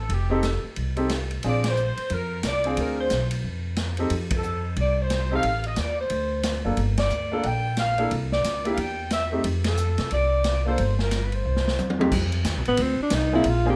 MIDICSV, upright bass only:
0, 0, Header, 1, 3, 480
1, 0, Start_track
1, 0, Tempo, 333519
1, 150, Time_signature, 4, 2, 24, 8
1, 19800, End_track
2, 0, Start_track
2, 0, Title_t, "Upright bass"
2, 0, Program_c, 0, 32
2, 132, Note_on_c, 0, 29, 78
2, 864, Note_off_c, 0, 29, 0
2, 1106, Note_on_c, 0, 36, 69
2, 2018, Note_off_c, 0, 36, 0
2, 2073, Note_on_c, 0, 34, 74
2, 2794, Note_off_c, 0, 34, 0
2, 3027, Note_on_c, 0, 41, 81
2, 3473, Note_off_c, 0, 41, 0
2, 3500, Note_on_c, 0, 36, 64
2, 3949, Note_off_c, 0, 36, 0
2, 3986, Note_on_c, 0, 38, 85
2, 4432, Note_off_c, 0, 38, 0
2, 4477, Note_on_c, 0, 35, 74
2, 4918, Note_off_c, 0, 35, 0
2, 4950, Note_on_c, 0, 41, 76
2, 5860, Note_off_c, 0, 41, 0
2, 5902, Note_on_c, 0, 41, 88
2, 6816, Note_off_c, 0, 41, 0
2, 6857, Note_on_c, 0, 36, 85
2, 7774, Note_off_c, 0, 36, 0
2, 7824, Note_on_c, 0, 33, 72
2, 8272, Note_off_c, 0, 33, 0
2, 8308, Note_on_c, 0, 39, 66
2, 8755, Note_off_c, 0, 39, 0
2, 8783, Note_on_c, 0, 38, 77
2, 9510, Note_off_c, 0, 38, 0
2, 9566, Note_on_c, 0, 30, 63
2, 9736, Note_off_c, 0, 30, 0
2, 9747, Note_on_c, 0, 31, 80
2, 10195, Note_off_c, 0, 31, 0
2, 10219, Note_on_c, 0, 38, 65
2, 10671, Note_off_c, 0, 38, 0
2, 10712, Note_on_c, 0, 34, 75
2, 11624, Note_off_c, 0, 34, 0
2, 11679, Note_on_c, 0, 36, 85
2, 12122, Note_off_c, 0, 36, 0
2, 12150, Note_on_c, 0, 37, 67
2, 12598, Note_off_c, 0, 37, 0
2, 12624, Note_on_c, 0, 40, 78
2, 13541, Note_off_c, 0, 40, 0
2, 13588, Note_on_c, 0, 41, 84
2, 14315, Note_off_c, 0, 41, 0
2, 14375, Note_on_c, 0, 48, 64
2, 14543, Note_off_c, 0, 48, 0
2, 14558, Note_on_c, 0, 36, 76
2, 15470, Note_off_c, 0, 36, 0
2, 15524, Note_on_c, 0, 31, 83
2, 16433, Note_off_c, 0, 31, 0
2, 16479, Note_on_c, 0, 36, 77
2, 16924, Note_off_c, 0, 36, 0
2, 16961, Note_on_c, 0, 40, 67
2, 17405, Note_off_c, 0, 40, 0
2, 17442, Note_on_c, 0, 41, 85
2, 17904, Note_off_c, 0, 41, 0
2, 17914, Note_on_c, 0, 39, 83
2, 18081, Note_off_c, 0, 39, 0
2, 18081, Note_on_c, 0, 36, 53
2, 18232, Note_off_c, 0, 36, 0
2, 18241, Note_on_c, 0, 33, 61
2, 18387, Note_off_c, 0, 33, 0
2, 18397, Note_on_c, 0, 38, 88
2, 18673, Note_off_c, 0, 38, 0
2, 18873, Note_on_c, 0, 36, 73
2, 19339, Note_off_c, 0, 36, 0
2, 19357, Note_on_c, 0, 34, 92
2, 19800, Note_off_c, 0, 34, 0
2, 19800, End_track
3, 0, Start_track
3, 0, Title_t, "Muted upright bass strokes"
3, 918, Note_on_c, 9, 29, 38
3, 1062, Note_off_c, 9, 29, 0
3, 2842, Note_on_c, 9, 29, 36
3, 2986, Note_off_c, 9, 29, 0
3, 18709, Note_on_c, 9, 29, 39
3, 18853, Note_off_c, 9, 29, 0
3, 19800, End_track
0, 0, End_of_file